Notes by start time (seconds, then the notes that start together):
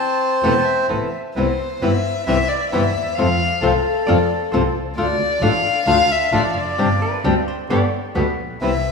Already playing: C4 C5 A5
0.43 E1 C3 E3 A3 B3 C4 E4 A4 B4 A5
0.65 E5
0.88 A1 C3 E3 A3 B3 C4 E4 A4 B4
1.35 C2 C3 E3 G3 B3 C4 E4 B4 C5
1.81 G1 C3 E3 G3 B3 C4 E4 B4 E5
2.26 C2 C3 E3 G3 B3 C4 E4 B4 E5
2.48 D5
2.70 G1 C3 E3 G3 B3 C4 E4 B4 E5
2.96 D#2
3.15 F2 C3 F3 A3 C4 F4 A4 F5
3.19 C4 F4
3.60 C2 C3 F3 A3 C4 F4 A4
4.06 F2 C3 F3 A3 C4 F4 A4 D5
4.52 C2 C3 F3 A3 C4 F4 A4 C5
4.75 C2
4.97 D2 D3 A3 D4 F4 A4 D5
5.41 A1 D3 A3 D4 F4 A4 F5
5.85 D2 D3 A3 D4 F4 A4 F5
6.11 E5
6.32 A1 D3 A3 D4 F4 A4 D5
6.56 F1 D5
6.78 G1 C3 G3 C4 D4 G4
7.02 B4
7.24 D2 C3 G3 C4 D4 G4
7.48 C5
7.69 G1 B2 D3 G3 B3 D4 G4 D5
8.14 D2 B2 D3 G3 B3 D4 G4 B4
8.37 A#1
8.60 C2 C3 E3 G3 B3 C4 E4 B4 E5